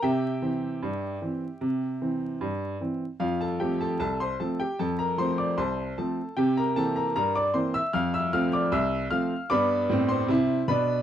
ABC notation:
X:1
M:2/4
L:1/16
Q:1/4=76
K:F
V:1 name="Upright piano"
[Geg]8- | [Geg]4 z4 | [Ff] [Aa] [Gg] [Aa] [Aa] [cc'] [Aa] [Gg] | [Aa] [Bb] [cc'] [dd'] [cac']2 [Aa]2 |
[Gg] [Bb] [Aa] [Bb] [Bb] [dd'] [cc'] [ee'] | [ff'] [ee'] [ff'] [dd'] [ee']2 [ff']2 | [d=bd']3 [cc']3 [=Bb]2 |]
V:2 name="Upright piano" clef=bass
C,2 [E,C]2 G,,2 [E,C]2 | C,2 [E,C]2 G,,2 [E,C]2 | F,,2 [F,A,C]2 C,,2 [F,A,C]2 | F,,2 [F,A,C]2 C,,2 [F,A,C]2 |
C,2 [E,B,C]2 G,,2 [E,B,C]2 | F,,2 [F,A,C]2 C,,2 [F,A,C]2 | [G,,=B,]2 [A,,C]2 [C,E]2 [=B,,D]2 |]